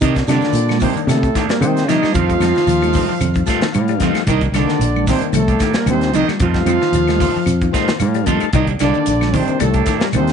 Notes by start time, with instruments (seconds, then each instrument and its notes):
0.01 fingered electric bass C3, clean electric guitar D#3 A#3 D4 G4, bass trombone D#3, trombone D#4, trumpet D#5, kick, closed hi-hat, high conga, shekere
0.15 kick, snare, closed hi-hat, shekere
0.27 fingered electric bass C3, clean electric guitar D3 D#3 A#3 D4 G4, bass trombone D3, trombone D4, trumpet D5, snare, closed hi-hat, high conga, claves, shekere
0.41 transistor combo organ D#3 A#3 D4, snare, shekere
0.53 fingered electric bass A#2, closed hi-hat, shekere
0.58 high conga
0.68 snare, high conga, claves, shekere
0.80 bass trombone C3, clean electric guitar D#3 A#3 D4 G4, trombone C4, trumpet C5, kick, open hi-hat, shekere
0.85 high conga, low conga
0.95 transistor combo organ D#3 A#3 D4, muted fingered electric bass stroke, closed hi-hat, shekere
1.07 bass trombone A2, fingered electric bass C3, trombone A3, trumpet A4, muted clean electric guitar stroke, snare, closed hi-hat, claves, shekere
1.11 high conga, low conga
1.23 kick, closed hi-hat, shekere
1.35 clean electric guitar D#3 A#3 D4 G4, kick, snare, closed hi-hat, shekere
1.48 bass trombone A#2, clean electric guitar G3, trombone A#3, trumpet A#4, muted fingered electric bass stroke, snare, closed hi-hat, shekere
1.58 bass trombone C3, fingered electric bass D#3, transistor combo organ D#3 A#3 C4, clean electric guitar D#3, trombone C4, closed hi-hat, claves, shekere
1.63 trumpet C5, high conga
1.77 snare, closed hi-hat, shekere
1.86 fingered electric bass C3, bass trombone D#3, clean electric guitar F3 A#3 D4 G4, trombone D#4, trumpet D#5, snare, closed hi-hat, shekere
1.90 high conga, low conga
2.02 clean electric guitar G3 A#3 D4 G4, muted fingered electric bass stroke, snare, high conga, claves, shekere
2.12 fingered electric bass F2, clean electric guitar D#3 A3 C4 F4, bass trombone F3, trombone F4, trumpet F5, kick, closed hi-hat, shekere
2.17 high conga, low conga
2.28 transistor combo organ G3 A3 D#4, kick, closed hi-hat, shekere
2.40 fingered electric bass F2, clean electric guitar D#3 F3 C4 F4, snare, closed hi-hat, high conga, claves, shekere
2.55 clean electric guitar D#3, snare, shekere
2.67 fingered electric bass D#2, clean electric guitar F3, closed hi-hat, shekere
2.81 clean electric guitar D#3, transistor combo organ G3 A3 D#4, closed hi-hat, high conga, claves, shekere
2.94 clean electric guitar D#3 A3 C4 F4, kick, open hi-hat, high conga, low conga, shekere
3.08 clean electric guitar F3, muted fingered electric bass stroke, shekere
3.20 fingered electric bass F2, closed hi-hat, claves, shekere
3.25 high conga, low conga
3.34 clean electric guitar D#3, kick, closed hi-hat, shekere
3.46 clean electric guitar D#3 A3 C4 F4, transistor combo organ G3 A3 F4 A5, kick, snare, closed hi-hat, shekere
3.61 clean electric guitar D#3, muted fingered electric bass stroke, snare, closed hi-hat, shekere
3.72 fingered electric bass A2, transistor combo organ F5, closed hi-hat, high conga, claves, shekere
3.88 clean electric guitar G3, closed hi-hat, shekere
3.99 fingered electric bass F2, clean electric guitar D#3 F3, transistor combo organ G3 A3 D#4, kick, snare, closed hi-hat, high conga, low conga, shekere
4.03 clean electric guitar A3 C4 F4
4.14 muted fingered electric bass stroke, snare, closed hi-hat, claves, shekere
4.27 fingered electric bass C2, bass trombone D#3, clean electric guitar D#3 A#3 D4 G4, trombone D#4, kick, closed hi-hat, high conga, shekere
4.31 trumpet D#5
4.41 kick, closed hi-hat, shekere
4.52 fingered electric bass C2, clean electric guitar D3 D#3 A#3 D4 G4, bass trombone D3, trombone D4, snare, closed hi-hat, claves, shekere
4.56 trumpet D5, high conga
4.66 transistor combo organ D#3 A#3 D4, snare, shekere
4.79 fingered electric bass A#1, closed hi-hat, high conga, shekere
4.96 high conga, claves, shekere
5.07 bass trombone C3, clean electric guitar D#3 A#3 D4 G4, trombone C4, kick, snare, open hi-hat, high conga, low conga, shekere
5.12 trumpet C5
5.20 transistor combo organ D#3 A#3 C4, muted fingered electric bass stroke, closed hi-hat, shekere
5.33 fingered electric bass C2, clean electric guitar F3, trombone A3, closed hi-hat, high conga, low conga, claves, shekere
5.37 bass trombone A2, trumpet A4
5.48 clean electric guitar A#3 D4 G4, kick, closed hi-hat, shekere
5.60 clean electric guitar D#3 A#3 G4, muted clean electric guitar stroke, kick, snare, closed hi-hat, shekere
5.73 clean electric guitar G3, trombone A#3, muted fingered electric bass stroke, snare, closed hi-hat, shekere
5.79 bass trombone A#2, trumpet A#4
5.86 fingered electric bass D#2, transistor combo organ D#3 A#3 D4, clean electric guitar D#3, trombone C4, closed hi-hat, high conga, claves, shekere
5.91 bass trombone C3, trumpet C5
6.01 snare, closed hi-hat, shekere
6.13 fingered electric bass C2, clean electric guitar D#3 F3 A#3 D4 G4, trombone D#4, closed hi-hat, high conga, low conga, shekere
6.17 bass trombone D#3, trumpet D#5
6.28 clean electric guitar G3, snare, high conga, claves, shekere
6.40 fingered electric bass F2, clean electric guitar D#3 A3 C4 F4, trombone F4, trumpet F5, kick, closed hi-hat, high conga, shekere
6.45 bass trombone F3
6.52 transistor combo organ G3 A3 D#4, kick, snare, closed hi-hat
6.56 shekere
6.66 fingered electric bass F2, clean electric guitar D#3 F3 A3 C4 F4, closed hi-hat, high conga, claves, shekere
6.81 clean electric guitar D#3, snare, shekere
6.92 fingered electric bass D#2, clean electric guitar F3, closed hi-hat, high conga, shekere
7.07 clean electric guitar D#3, transistor combo organ G3 A3 D#4, snare, closed hi-hat, high conga, claves, shekere
7.20 clean electric guitar D#3 A3 C4 F4, kick, open hi-hat, low conga, shekere
7.36 clean electric guitar F3, muted fingered electric bass stroke, shekere
7.46 fingered electric bass F2, closed hi-hat, claves, shekere
7.61 clean electric guitar D#3, kick, closed hi-hat, shekere
7.72 clean electric guitar D#3 A3 C4 F4, transistor combo organ G3 A3 D#4 C5, kick, snare, closed hi-hat, shekere
7.88 clean electric guitar D#3, muted fingered electric bass stroke, snare, closed hi-hat, shekere
8.00 fingered electric bass A2, transistor combo organ F5, closed hi-hat, high conga, claves, shekere
8.14 clean electric guitar G3, closed hi-hat, shekere
8.25 fingered electric bass F2, clean electric guitar D#3 A3 C4 F4, transistor combo organ G3 A3 D#4 A5, muted clean electric guitar stroke, kick, closed hi-hat, high conga, low conga, shekere
8.40 muted fingered electric bass stroke, closed hi-hat, claves, shekere
8.53 fingered electric bass C2, bass trombone D#3, clean electric guitar D#3 A#3 D4 G4, trombone D#4, trumpet D#5, kick, closed hi-hat, high conga, low conga, shekere
8.67 kick, closed hi-hat, shekere
8.79 fingered electric bass C2, clean electric guitar D3 D#3 A#3 D4 G4, bass trombone D3, trombone D4, snare, closed hi-hat, high conga, claves, shekere
8.83 trumpet D5
8.94 transistor combo organ D#3 A#3 D4, shekere
9.06 fingered electric bass A#1, closed hi-hat, high conga, shekere
9.21 snare, high conga, claves, shekere
9.34 bass trombone C3, clean electric guitar D#3 D4 G4, trombone C4, trumpet C5, kick, open hi-hat, high conga, low conga, shekere
9.48 transistor combo organ D#3 A#3 D4, muted fingered electric bass stroke, closed hi-hat, shekere
9.60 fingered electric bass C2, bass trombone A2, clean electric guitar G3, trombone A3, trumpet A4, closed hi-hat, high conga, low conga, claves, shekere
9.74 clean electric guitar A#3 D4 G4, kick, closed hi-hat, shekere
9.86 clean electric guitar D#3 A#3 D4 G4, kick, snare, closed hi-hat, shekere
9.99 clean electric guitar G3, trombone A#3, muted fingered electric bass stroke, snare, closed hi-hat, shekere
10.04 bass trombone A#2, trumpet A#4
10.13 fingered electric bass D#2, transistor combo organ D#3 A#3 D4, clean electric guitar D#3, trombone C4, closed hi-hat, high conga, claves, shekere
10.17 bass trombone C3, trumpet C5
10.27 snare, closed hi-hat, shekere